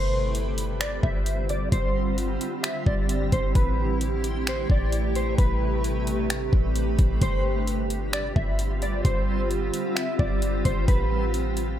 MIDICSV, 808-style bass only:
0, 0, Header, 1, 2, 480
1, 0, Start_track
1, 0, Tempo, 458015
1, 1804, Time_signature, 4, 2, 24, 8
1, 12360, End_track
2, 0, Start_track
2, 0, Title_t, "808-style bass"
2, 0, Program_c, 0, 38
2, 0, Note_on_c, 0, 31, 110
2, 1042, Note_off_c, 0, 31, 0
2, 1082, Note_on_c, 0, 31, 100
2, 1774, Note_off_c, 0, 31, 0
2, 1804, Note_on_c, 0, 31, 102
2, 2495, Note_off_c, 0, 31, 0
2, 3001, Note_on_c, 0, 31, 104
2, 3463, Note_off_c, 0, 31, 0
2, 3484, Note_on_c, 0, 31, 99
2, 3714, Note_off_c, 0, 31, 0
2, 3723, Note_on_c, 0, 33, 107
2, 4881, Note_off_c, 0, 33, 0
2, 4922, Note_on_c, 0, 33, 100
2, 5614, Note_off_c, 0, 33, 0
2, 5643, Note_on_c, 0, 33, 104
2, 6801, Note_off_c, 0, 33, 0
2, 6841, Note_on_c, 0, 33, 103
2, 7303, Note_off_c, 0, 33, 0
2, 7323, Note_on_c, 0, 33, 104
2, 7554, Note_off_c, 0, 33, 0
2, 7563, Note_on_c, 0, 31, 107
2, 8721, Note_off_c, 0, 31, 0
2, 8761, Note_on_c, 0, 31, 108
2, 9453, Note_off_c, 0, 31, 0
2, 9482, Note_on_c, 0, 31, 102
2, 10174, Note_off_c, 0, 31, 0
2, 10681, Note_on_c, 0, 31, 106
2, 11143, Note_off_c, 0, 31, 0
2, 11165, Note_on_c, 0, 31, 99
2, 11394, Note_off_c, 0, 31, 0
2, 11403, Note_on_c, 0, 33, 107
2, 12360, Note_off_c, 0, 33, 0
2, 12360, End_track
0, 0, End_of_file